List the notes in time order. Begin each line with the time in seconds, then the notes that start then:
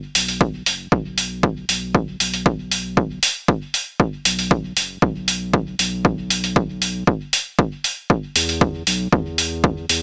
0.15 B1, open hi-hat
0.28 open hi-hat
0.41 kick
0.66 F#1, open hi-hat
0.92 B1, kick
1.18 open hi-hat
1.43 kick
1.69 B1, open hi-hat
1.95 kick
2.20 B1, open hi-hat
2.34 open hi-hat
2.46 kick
2.71 open hi-hat
2.97 kick
3.23 open hi-hat
3.48 kick
3.74 open hi-hat
4.00 kick
4.25 B1, open hi-hat
4.39 open hi-hat
4.51 kick
4.77 F#1, open hi-hat
5.02 B1, kick
5.28 open hi-hat
5.54 kick
5.79 B1, open hi-hat
6.05 B1, kick
6.30 open hi-hat
6.44 open hi-hat
6.56 kick
6.82 open hi-hat
7.07 kick
7.33 open hi-hat
7.59 kick
7.84 open hi-hat
8.10 kick
8.36 E2, open hi-hat
8.49 open hi-hat
8.61 kick
8.87 B1, open hi-hat
9.12 E2, kick
9.38 open hi-hat
9.64 kick
9.89 E2, open hi-hat